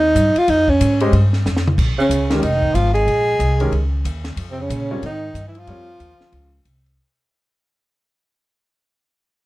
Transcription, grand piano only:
1.01 G#3 C#4 G4 C5 D#5
2.31 D#3 G#3 C#4 G4 A#4
3.61 D#3 G#3 C#4 G4 A#4
4.91 G3 C4 F4 A#4 C#5
5.68 G3 C4 F4 A#4 C#5

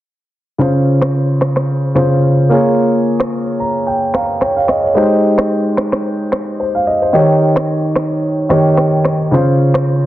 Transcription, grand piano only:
0.58 C#3 C#4 F4 C5
1.95 C#3 C#4 F4 C5
2.49 A#3 F4 G#4 C#5
3.60 A#5
3.87 G5
4.14 F5 A#5
4.42 C#5 G5
4.57 F5
4.69 D#5
4.84 C#5
4.95 G#3 D#4 G4 C5
6.60 C5
6.75 F5
6.87 D#5
7.02 C5
7.13 D#3 D#4 G4 C#5
8.49 D#3 D#4 G4 C#5
9.31 C#3 C#4 F4 C5

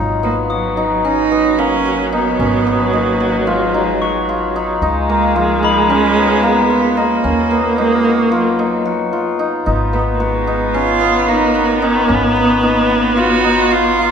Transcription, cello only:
0.24 A#3
0.52 F#3
1.05 D#4
1.58 C#4
2.13 B3
2.92 A#3
3.47 G#3
5.08 G#3
5.35 F3
5.89 C#4
6.43 B3
6.97 A#3
7.78 G#3
8.34 F#3
9.94 B3
10.14 A#3
10.21 G#3
10.75 F4
11.28 D#4
11.82 C#4
12.36 B3
12.62 A#3
13.16 F#4
13.72 F4

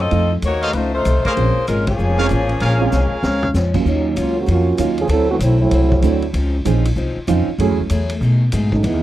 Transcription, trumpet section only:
0.63 A4 C5 D#5 F5
1.25 G#4 A#4 C#5 F5
2.19 G#4 A#4 C#5 F5
2.61 G#4 A#4 C#5 F5

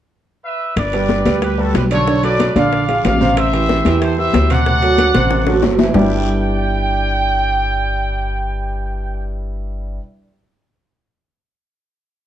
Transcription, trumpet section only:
0.45 B4 E5
0.78 B4 D5
1.43 G4 B4
1.59 F#4 A4
1.75 G4 B4
1.92 A4 C#5
2.24 B4 D5
2.56 D5 F5
3.05 D5 F5
3.37 C5 E5
4.03 A4 C5
4.18 C5 E5
4.51 D5 F#5
5.95 G5

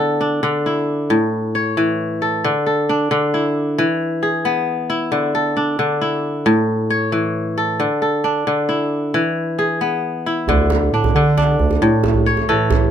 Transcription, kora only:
Already playing: D3 B3 E4
0.00 A4
0.21 D4
0.43 D3
0.66 E4
1.10 A2
1.55 C#5
1.77 E3
2.22 A4
2.44 D3
2.66 A4
2.89 D4
3.11 D3
3.34 E4
3.78 E3
4.23 G#4
4.45 B3
4.90 E4
5.12 D3
5.35 A4
5.57 D4
5.79 D3
6.01 E4
6.46 A2
6.90 C#5
7.12 E3
7.58 A4
7.80 D3
8.02 A4
8.24 D4
8.47 D3
8.69 E4
9.14 E3
9.59 G#4
9.81 B3
10.26 E4
10.49 D3
10.94 D4
11.16 D3
11.37 D4
11.82 A2
12.26 C#5
12.49 E3 A4

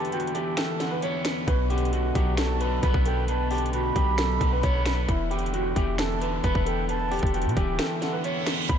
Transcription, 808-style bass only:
1.48 B1
2.15 B1
2.83 B1
2.94 B1
3.96 B1
4.41 B1
4.63 B1
5.09 E1
5.76 E1
6.44 E1
6.55 E1
7.23 E1
7.45 B2
7.57 D1
8.69 B1

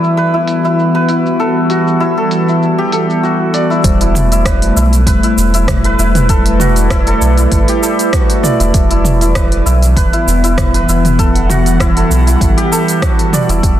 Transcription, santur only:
Already playing: E4 F#4 A4 B4 D5
0.17 B4
0.34 E4
0.65 E4
0.95 B4
1.09 E4
1.40 A4
1.70 F#4
2.00 E4
2.17 A4
2.48 E4
2.78 G4
2.93 A4
3.23 F#4
3.54 D5
3.70 E4
4.01 E4
4.32 E4
4.46 B4
4.76 E4
5.07 B4
5.24 E4
5.54 E4
5.85 B4
5.99 E4
6.29 A4
6.60 F#4
6.90 E4
7.07 A4
7.38 E4
7.69 G4
7.83 A4
8.13 F#4
8.43 D5
8.60 E4
8.91 E4
9.21 E4
9.36 B4
9.66 E4
9.96 B4
10.13 E4
10.44 E4
10.74 B4
10.89 E4
11.19 A4
11.50 F#4
11.80 E4
11.97 A4
12.27 E4
12.57 G4
12.72 A4
13.03 F#4
13.33 D5
13.50 E4

